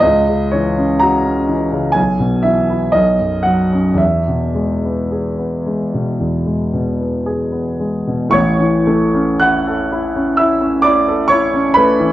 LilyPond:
<<
  \new Staff \with { instrumentName = "Grand piano" } { \time 4/4 \key fis \dorian \tempo 4 = 59 dis''8 cis''8 ais''4 gis''8 e''8 dis''8 fis''8 | e''2.~ e''8 r8 | \key a \major <cis'' cis'''>4 <fis'' fis'''>4 <e'' e'''>8 <d'' d'''>8 <cis'' cis'''>8 <b' b''>8 | }
  \new Staff \with { instrumentName = "Grand piano" } { \clef bass \time 4/4 \key fis \dorian cis,16 cis16 e16 cis'16 fis'16 cis'16 e16 cis16 b,,16 b,16 e16 e'16 b,,16 fis,16 fis16 cis'16 | e,16 b,16 gis16 b16 gis'16 b16 gis16 b,16 e,16 gis16 b,16 b16 gis'16 b16 gis16 b,16 | \key a \major <a,, a,>16 e16 a16 cis'16 e'16 a'16 e'16 cis'16 e'16 cis'16 e'16 a'16 e'16 cis'16 a16 e16 | }
>>